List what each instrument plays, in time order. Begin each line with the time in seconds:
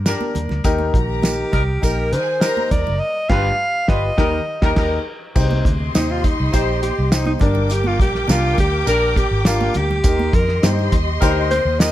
Already playing: fingered electric bass G2
0.06 horn section G3 D4 A#4, grand piano D4 G4 A#4, snare, closed hi-hat, tambourine, muted conga
0.21 muted conga, high conga
0.35 fingered electric bass D#2, closed hi-hat, low conga
0.49 fingered electric bass D2, snare, low conga
0.64 fingered electric bass D#2, grand piano D#3 D#4 G4 A#4, kick, closed hi-hat, tambourine, muted conga
0.78 muted conga, high conga
0.94 fingered electric bass A#1, alto saxophone G4, string section A#4 A#5, kick, closed hi-hat
1.22 grand piano D#4 G4 A#4, snare, closed hi-hat, tambourine, muted conga, high conga
1.38 muted conga
1.52 fingered electric bass C2, horn section G3 D#4 A#4, kick, closed hi-hat, low conga
1.81 fingered electric bass A#1, grand piano D#4 G4 A#4, string section G4 G5, alto saxophone A#4, kick, closed hi-hat, tambourine, muted conga
2.11 fingered electric bass D#3, horn section G3 D#4 A#4, string section G#4 G#5, alto saxophone C5, closed hi-hat
2.40 horn section G3 D#4 A#4, grand piano D#4 G4 A#4, string section A#4 A#5, snare, closed hi-hat, tambourine, muted conga
2.57 high conga
2.71 fingered electric bass D#2, alto saxophone D5, kick, closed hi-hat, low conga
2.87 fingered electric bass F#1, low conga
2.99 alto saxophone D#5
3.29 fingered electric bass G1, grand piano G2 F4 G4 B4, horn section G3 F4 B4, alto saxophone F5, kick, snare, crash
3.88 fingered electric bass G1, horn section G3 F4 B4, grand piano F4 G4 B4, alto saxophone D#5, kick, snare
4.17 fingered electric bass D#2, grand piano D#3 D#4 G4 A#4, horn section G3 D#4 A#4, string section A#4 A#5, kick, snare
4.62 fingered electric bass D#2, horn section G3 D#4 A#4, grand piano D#4 G4 A#4, string section A#4 A#5, kick, snare
4.76 fingered electric bass D#2, horn section G3 D#4 A#4, grand piano D#4 G4 A#4, string section A#4 A#5, kick, snare, crash
5.35 fingered electric bass C2, grand piano C3 D#4 G4 C5, string section G4 D#5 C6, kick, crash, tambourine, muted conga
5.51 high conga
5.65 fingered electric bass D2, kick, closed hi-hat
5.95 fingered electric bass D#2, grand piano D#4 G4 C5, alto saxophone D#4, snare, closed hi-hat, tambourine, high conga
6.09 alto saxophone F4, muted conga
6.24 alto saxophone D#4, kick, closed hi-hat, low conga
6.40 fingered electric bass C2
6.52 fingered electric bass A#1, horn section G3 D#4 C5, grand piano D#4 G4 C5, alto saxophone G4, kick, closed hi-hat, tambourine, muted conga
6.83 alto saxophone G4, closed hi-hat, high conga
6.99 fingered electric bass C2
7.11 grand piano D#4 G4 C5, alto saxophone D#4, snare, closed hi-hat, tambourine, muted conga
7.25 alto saxophone D#4, muted conga, high conga
7.39 fingered electric bass G1, grand piano G2 D4 G4 A#4, alto saxophone D4, string section A#4 G5 D6, kick, closed hi-hat, low conga
7.55 low conga
7.69 alto saxophone G4, closed hi-hat, tambourine, muted conga
7.84 alto saxophone F4, high conga
7.99 fingered electric bass A#1, alto saxophone G4, kick, closed hi-hat
8.15 snare
8.27 fingered electric bass C2, grand piano D4 G4 A#4, alto saxophone F4, snare, closed hi-hat, tambourine, muted conga, high conga
8.58 fingered electric bass D2, alto saxophone G4, kick, closed hi-hat, low conga
8.87 fingered electric bass A#1, horn section G3 D4 A#4, grand piano D4 G4 A#4, alto saxophone A#4, closed hi-hat, tambourine
9.16 alto saxophone G4, kick, closed hi-hat, high conga
9.31 fingered electric bass G#1
9.45 grand piano D4 G4 A#4, alto saxophone F4, snare, closed hi-hat, tambourine, muted conga
9.61 muted conga, high conga
9.74 fingered electric bass D2, alto saxophone G4, closed hi-hat, low conga
9.91 low conga
10.03 fingered electric bass D#2, grand piano D#3 D#4 G4 A#4, string section G4 D#5 C6, kick, closed hi-hat, tambourine
10.19 muted conga, high conga
10.33 fingered electric bass F2, alto saxophone A#4, kick, closed hi-hat
10.49 snare
10.62 fingered electric bass G2, grand piano D#4 G4 C5, snare, closed hi-hat, tambourine, muted conga, high conga
10.79 muted conga
10.92 fingered electric bass D#2, kick, closed hi-hat, low conga
11.20 fingered electric bass D2, horn section G3 D#4 A#4, grand piano D#4 G4 C5, kick, closed hi-hat, tambourine
11.51 alto saxophone C5, closed hi-hat, high conga
11.65 fingered electric bass D#2
11.80 grand piano D#4 G4 A#4, alto saxophone D#5, snare, closed hi-hat, tambourine